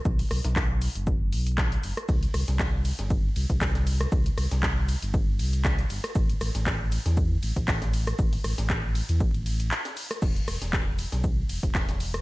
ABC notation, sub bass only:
X:1
M:4/4
L:1/16
Q:"Swing 16ths" 1/4=118
K:Ador
V:1 name="Sub bass" clef=bass
B,,, z B,,, B,,,3 z F,,,3 B,,,3 z F,,, z | C,, z C,, C,,3 z G,,,2 z C,, C,,4 z | C,, z C,, C,,3 z G,,,3 C,,3 z G,,, z | A,,, z A,,, A,,,3 z E,,2 z A,,, A,,,4 z |
A,,, z A,,, A,,,3 z E,, A,,,4 z4 | E,,, z E,,, E,,,3 z B,,,2 z E,,, E,,,4 z |]